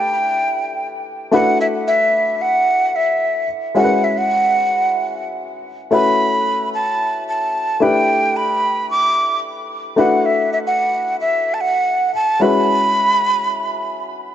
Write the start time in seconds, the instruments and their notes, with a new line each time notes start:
Already playing: grand piano A3 D4 E4 G4 B4, flute G5
1.31 grand piano A3 D4 E4 F#4 B4, flute F#5
1.61 flute E5
1.88 flute E5
2.42 flute F#5
2.96 flute E5
3.75 grand piano G#3 C#4 E4 F#4 A#4, flute F#5
3.84 grand piano B4
4.04 flute E5
4.18 flute F#5
5.91 grand piano A3 C#4 E4 F#4 B4, flute B5
6.74 flute A5
7.29 flute A5
7.80 grand piano A3 D4 E4 G4 B4, flute G5
8.37 flute B5
8.91 flute D6
9.96 grand piano A3 D4 E4 F#4 B4, flute F#5
10.26 flute E5
10.53 flute E5
10.67 flute F#5
11.21 flute E5
11.54 flute A5
11.61 flute F#5
12.15 flute A5
12.40 grand piano G#3 C#4 E4 F#4 B4, flute B5